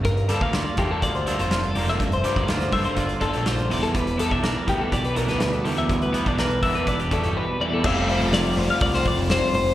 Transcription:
0.03 picked electric bass G1, clean electric guitar G2 A#4, kick, closed hi-hat
0.17 closed hi-hat
0.29 overdriven electric guitar D3 G3 A#3 D4, clean electric guitar G3 A4, closed hi-hat
0.41 picked electric bass D2, clean electric guitar A#3 F5, kick
0.53 clean electric guitar F4 D5, snare, closed hi-hat
0.77 picked electric bass E2, clean electric guitar D3 G4 C5, overdriven electric guitar D3 G3 A#3 D4, kick, closed hi-hat
0.91 clean electric guitar A4
1.02 picked electric bass D2, clean electric guitar F4 D5, kick, closed hi-hat
1.15 clean electric guitar C5, closed hi-hat
1.27 overdriven electric guitar D3 G3 A#3 D4, clean electric guitar A4 A#4, closed hi-hat
1.39 picked electric bass F1, clean electric guitar C5, closed hi-hat
1.51 clean electric guitar D3 F4, snare, closed hi-hat
1.64 clean electric guitar A4, closed hi-hat
1.75 picked electric bass F1, overdriven electric guitar D3 G3 A#3 D4, clean electric guitar A#3, open hi-hat
1.88 clean electric guitar E5, snare, closed hi-hat
2.00 picked electric bass F1, clean electric guitar G2, kick, closed hi-hat
2.12 clean electric guitar C5, closed hi-hat
2.24 overdriven electric guitar D3 G3 A#3 D4, clean electric guitar G3, closed hi-hat
2.36 picked electric bass D2, clean electric guitar A#3 D5, kick, closed hi-hat
2.48 clean electric guitar F4 C5, snare, closed hi-hat
2.60 snare, closed hi-hat
2.72 picked electric bass G2, overdriven electric guitar D3 G3 A#3 D4, clean electric guitar D3 C5 E5, kick, open hi-hat
2.84 clean electric guitar C5, closed hi-hat
2.97 picked electric bass G1, clean electric guitar F4 D5, kick, closed hi-hat
3.09 closed hi-hat
3.21 overdriven electric guitar D3 G3 A#3 D4, clean electric guitar A4, kick, closed hi-hat
3.33 picked electric bass A#1, closed hi-hat
3.46 clean electric guitar D3 F4 C5, snare, closed hi-hat
3.59 closed hi-hat
3.70 picked electric bass E1, clean electric guitar E2 D5, overdriven electric guitar E3 G3 B3 E4, open hi-hat
3.83 clean electric guitar A4, closed hi-hat
3.95 picked electric bass E1, clean electric guitar G3 B4, kick, closed hi-hat
4.07 closed hi-hat
4.18 overdriven electric guitar E3 G3 B3 E4, clean electric guitar B3 A4, closed hi-hat
4.31 picked electric bass B1, clean electric guitar D4 E5, kick
4.42 clean electric guitar E3 A#4 D5, snare, closed hi-hat
4.67 picked electric bass D2, overdriven electric guitar E3 G3 B3 E4, clean electric guitar B3 G4, kick, closed hi-hat
4.78 clean electric guitar D4 A4
4.92 picked electric bass B1, clean electric guitar G4 D5, kick, closed hi-hat
5.04 clean electric guitar B4, closed hi-hat
5.16 clean electric guitar B2 D4 A#4, overdriven electric guitar E3 G3 B3 E4, closed hi-hat
5.28 picked electric bass D2, clean electric guitar B4, snare, closed hi-hat
5.40 clean electric guitar G3, snare, closed hi-hat
5.53 clean electric guitar A4, closed hi-hat
5.64 picked electric bass D2, clean electric guitar E2, overdriven electric guitar E3 G3 B3 E4, open hi-hat
5.77 clean electric guitar E5, closed hi-hat
5.89 picked electric bass D2, clean electric guitar G3, kick, closed hi-hat
6.02 clean electric guitar B4, closed hi-hat
6.13 overdriven electric guitar E3 G3 B3 E4, clean electric guitar B3, closed hi-hat
6.26 picked electric bass B1, clean electric guitar D4 D5, kick, closed hi-hat
6.38 clean electric guitar E3 A#4 B4, snare, closed hi-hat
6.50 closed hi-hat
6.63 picked electric bass E2, overdriven electric guitar E3 G3 B3 E4, clean electric guitar D4 E5, kick, open hi-hat
6.75 clean electric guitar B4, closed hi-hat
6.87 picked electric bass E1, clean electric guitar E4 D5, kick, closed hi-hat
6.99 clean electric guitar G4, closed hi-hat
7.11 clean electric guitar B2 D4 A4, overdriven electric guitar E3 G3 B3 E4, kick, closed hi-hat
7.24 picked electric bass G1, closed hi-hat
7.36 clean electric guitar G3 B4
7.60 clean electric guitar E2 D5, overdriven electric guitar E3 G3 B3 E4
7.73 clean electric guitar A4
7.84 picked electric bass F1, overdriven electric guitar F2 C3 F3 A3 C4 F4, clean electric guitar E5, kick, crash
8.09 clean electric guitar C5, open hi-hat
8.20 picked electric bass F1, clean electric guitar A4
8.33 clean electric guitar D5, snare, open hi-hat
8.57 picked electric bass F1, clean electric guitar C5, open hi-hat
8.70 clean electric guitar F5
8.81 picked electric bass C2, clean electric guitar D5, kick, open hi-hat
8.94 clean electric guitar C5, snare
9.05 clean electric guitar D5, kick, open hi-hat
9.17 picked electric bass F1
9.30 clean electric guitar C5, snare, open hi-hat
9.54 picked electric bass F1, clean electric guitar C5, open hi-hat

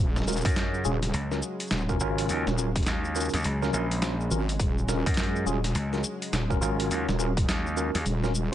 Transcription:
Already playing: analog synth pad C#3 F#3 G#3
0.00 wobble bass D#1
0.16 snare, shaker
0.22 snare
0.27 tine electric piano C#4 F4 F#4 A#4, snare, shaker
0.32 shaker
0.36 snare, shaker
0.41 shaker
0.45 slap bass F#2, kick, closed hi-hat, shaker
0.48 shaker
0.51 shaker
0.54 snare, closed hi-hat, shaker
0.56 shaker
0.74 shaker
0.85 wobble bass D#1, tine electric piano C#4 F4 F#4 G#4, shaker
1.03 snare, closed hi-hat, shaker
1.14 slap bass C#2, closed hi-hat, shaker
1.31 tine electric piano C#4 F4 F#4 A#4, snare, shaker
1.42 shaker
1.60 closed hi-hat, shaker
1.67 snare, closed hi-hat, shaker
1.71 wobble bass D#1, shaker
1.77 shaker
1.80 shaker
1.89 tine electric piano C#4 F4 F#4 A#4, kick, shaker
2.00 slap bass G#1, tine electric piano C#4 F4 F#4 A#4, shaker
2.18 closed hi-hat, shaker
2.29 slap bass D#2, closed hi-hat, shaker
2.47 wobble bass D#1, snare, shaker
2.58 tine electric piano C#4 F4 F#4 A#4, shaker
2.76 kick, closed hi-hat, shaker
2.83 snare, closed hi-hat
2.86 slap bass D#2, closed hi-hat, shaker
3.05 shaker
3.15 tine electric piano C#4 F4 F#4 A#4, shaker
3.20 shaker
3.25 shaker
3.29 shaker
3.34 slap bass D#2, snare, closed hi-hat, shaker
3.36 shaker
3.39 shaker
3.42 closed hi-hat, shaker
3.44 slap bass C#2, shaker
3.62 tine electric piano C#4 F4 F#4 A#4, snare, shaker
3.73 slap bass A#1, tine electric piano C#4 F4 F#4 A#4, shaker
3.91 closed hi-hat, shaker
4.02 tine electric piano C#4 F4 F#4 C5, snare, closed hi-hat, shaker
4.20 shaker
4.31 wobble bass G#1, tine electric piano C#4 F4 F#4 A#4, shaker
4.49 closed hi-hat, shaker
4.60 wobble bass D#1, kick, closed hi-hat, shaker
4.78 shaker
4.88 tine electric piano C#4 F4 F#4 A#4, snare, shaker
5.06 slap bass F#2, kick, closed hi-hat, shaker
5.14 snare, closed hi-hat
5.17 closed hi-hat, shaker
5.23 closed hi-hat
5.36 shaker
5.46 wobble bass D#1, tine electric piano C#4 F4 F#4 G#4, shaker
5.64 snare, closed hi-hat, shaker
5.75 slap bass C#2, closed hi-hat, shaker
5.93 tine electric piano C#4 F4 F#4 A#4, snare, shaker
5.96 snare
5.98 snare
6.01 snare, shaker
6.22 closed hi-hat, shaker
6.32 wobble bass D#1, snare, closed hi-hat, shaker
6.50 tine electric piano C#4 F4 F#4 A#4, kick, shaker
6.61 slap bass G#1, tine electric piano C#4 F4 F#4 A#4, shaker
6.80 closed hi-hat, shaker
6.91 slap bass D#2, closed hi-hat, shaker
7.08 wobble bass D#1, snare, shaker
7.19 tine electric piano C#4 F4 F#4 A#4, shaker
7.37 kick, closed hi-hat, shaker
7.48 slap bass D#2, snare, closed hi-hat, shaker
7.67 shaker
7.77 tine electric piano C#4 F4 F#4 A#4, shaker
7.95 slap bass D#2, snare, closed hi-hat, shaker
8.06 wobble bass D#1, closed hi-hat, shaker
8.23 tine electric piano C#4 F4 F#4 A#4, snare, shaker
8.35 shaker

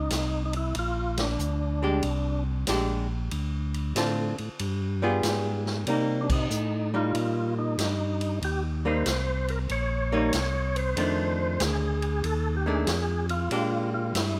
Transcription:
Already playing: tonewheel organ D#4
0.10 tonewheel organ C2, snare, hi-hat pedal, ride
0.45 tonewheel organ D#4
0.53 tonewheel organ E4, ride
0.75 tonewheel organ A#1, ride
0.79 tonewheel organ F4
1.17 tonewheel organ D4, snare, ride
1.39 tonewheel organ D2, hi-hat pedal
1.83 hollow-body jazz guitar G#3 D4 G4
2.03 tonewheel organ C2, ride
2.67 tonewheel organ A#1, hollow-body jazz guitar G#3 D4 G4, snare, hi-hat pedal, ride
3.31 tonewheel organ D2, ride
3.74 ride
3.95 tonewheel organ A2, hollow-body jazz guitar D3 C4 F4 A4, snare, hi-hat pedal, ride
4.38 tonewheel organ A2, ride
4.59 tonewheel organ G2, ride
5.02 hollow-body jazz guitar G3 B3 F4 G#4
5.23 tonewheel organ G#2, snare, hi-hat pedal, ride
5.66 snare
5.87 tonewheel organ C3, hollow-body jazz guitar G3 A#3 D#4, ride
6.21 tonewheel organ D4
6.30 tonewheel organ D#4, kick, crash
6.50 tonewheel organ A2, hi-hat pedal
6.94 hollow-body jazz guitar G3 D#4, tonewheel organ F4
7.14 tonewheel organ A#2, ride
7.59 tonewheel organ D#4
7.78 tonewheel organ G2, snare, hi-hat pedal, ride
8.21 ride
8.42 tonewheel organ D#2 G4, ride
8.85 hollow-body jazz guitar G3 A#3 D#4, tonewheel organ C5
9.06 tonewheel organ C2, snare, hi-hat pedal, ride
9.48 tonewheel organ A#4, ride
9.69 tonewheel organ A#1 C#5, ride
10.12 hollow-body jazz guitar G3 A#3 D#4
10.33 tonewheel organ C2, snare, hi-hat pedal, ride
10.76 tonewheel organ C5, ride
10.96 tonewheel organ F2, hollow-body jazz guitar D#3 A3 D4, ride
11.60 tonewheel organ D2 G#4, snare, hi-hat pedal, ride
12.02 ride
12.24 tonewheel organ D#2 A4, ride
12.57 tonewheel organ G4
12.66 hollow-body jazz guitar D#3 A3 D4, tonewheel organ G#4
12.87 tonewheel organ F2, snare, hi-hat pedal, ride
13.29 tonewheel organ F4, ride
13.51 tonewheel organ A#2, hollow-body jazz guitar G#3 D4 G4, ride
13.94 tonewheel organ F4
14.14 tonewheel organ G2 E4, snare, hi-hat pedal, ride

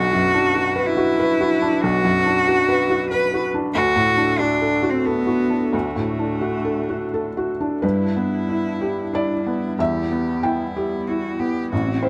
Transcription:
Already playing: felt piano B1, analog synth pad D4 F#4 B4, cello F#4
0.13 felt piano F#2
0.34 felt piano D4
0.55 felt piano F#4
0.76 felt piano B4
0.86 cello E4
0.97 felt piano F#4
1.20 felt piano B4
1.41 felt piano F#4
1.62 felt piano D4
1.81 felt piano B1, cello F#4
2.04 felt piano F#2
2.26 felt piano D4
2.47 felt piano F#4
2.69 felt piano B4
2.90 felt piano F#4
3.10 cello B4, felt piano B4
3.34 felt piano F#4
3.54 felt piano D4
3.74 felt piano D2, analog synth pad D4 F#4 A4, cello F#4
3.96 felt piano A2
4.17 felt piano D4
4.39 cello D4, felt piano F#4
4.61 felt piano A4
4.83 felt piano F#4
4.90 cello C4
5.06 cello B3, felt piano A4
5.27 felt piano F#4
5.50 felt piano D4
5.73 felt piano D2, cello A3
5.96 felt piano A2
6.19 felt piano D4
6.41 felt piano F#4
6.65 felt piano A4
6.89 felt piano F#4
7.14 felt piano A4
7.37 felt piano F#4
7.61 felt piano D4
7.82 felt piano G2 B4, analog synth pad G3 D4 E4, cello E4
8.17 felt piano B3
8.49 felt piano E4
8.81 felt piano G4
9.13 cello D4, felt piano E4 D5
9.46 felt piano B3, cello E4
9.79 felt piano E2 E5, analog synth pad B3, cello G4
10.11 felt piano B3
10.43 felt piano E4 G5, cello E4
10.76 felt piano G4
11.08 felt piano E4, cello F#4
11.40 felt piano B3, cello G4
11.72 felt piano A1, analog synth pad C4 C5, cello F#4
12.03 felt piano C4 C5, cello E4

